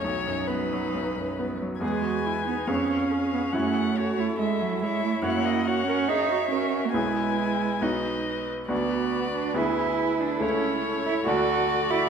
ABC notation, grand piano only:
X:1
M:4/4
L:1/8
Q:1/4=140
K:E
V:1 name="Grand piano"
B,,, F,, B, F, B,,, F,, B, F, | [E,,G,B,G]4 [^E,,B,CG]4 | [F,,CEF]8 | [F,,CEF]8 |
[B,,,B,EG]4 [B,,,B,DF]4 | [K:A] [D,,B,DF]4 [D,,B,EG]4 | [C,,A,EA]4 [D,,DFA]4 |]